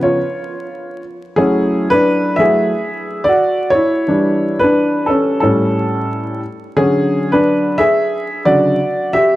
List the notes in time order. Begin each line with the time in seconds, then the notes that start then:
Already playing: C#3 F3 B3
0.03 F4 C#5
1.36 F#3 A3 C#4 E4 G#4
1.90 D4 B4
2.36 F#3 A3 E4 G#4 E5
3.24 D5
3.29 F#4
3.70 C#5
3.75 E4
4.07 E3 G3 D4
4.59 B4
4.63 D4
5.06 C#4 A4
5.40 A2 G3 C#4 A4
6.76 D3 F#3 C#4 G#4
7.32 D4 B4
7.78 G#4 E5
8.45 C#3 D3 F#3 F#4 D5
9.13 G4 E5